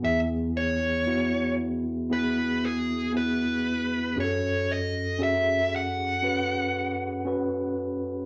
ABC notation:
X:1
M:4/4
L:1/8
Q:1/4=58
K:E
V:1 name="Lead electric guitar"
e c2 z B G B2 | c d e f4 z |]
V:2 name="Tine electric piano"
[B,EG]2 [B,EF]2 [B,EG]2 [B,EG]2 | [CFGA]2 [CFG]2 [CFB]2 [CFB]2 |]
V:3 name="Tine electric piano" clef=bass
[E,,E,]8 | F,,8 |]